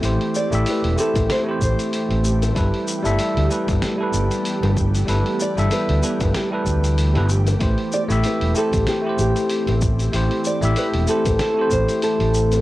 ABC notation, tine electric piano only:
X:1
M:4/4
L:1/16
Q:"Swing 16ths" 1/4=95
K:Am
V:1 name="Tine electric piano"
[A,EGc]3 [A,EGe]3 [A,EGc]3 [A,EGc]6- [A,EGc] | [G,EAB]3 [G,EAe]3 [G,EAB]3 [G,EAB]6- [G,EAB] | [G,EAB]3 [G,EAe]3 [G,EAB]3 [G,EAB]4 [G,EAB] z2 | [A,EGc]3 [A,EGe]3 [A,EGc]3 [A,EGc]6- [A,EGc] |
[A,EGc]3 [A,EGe]3 [A,EGc]3 [A,EGc]6- [A,EGc] |]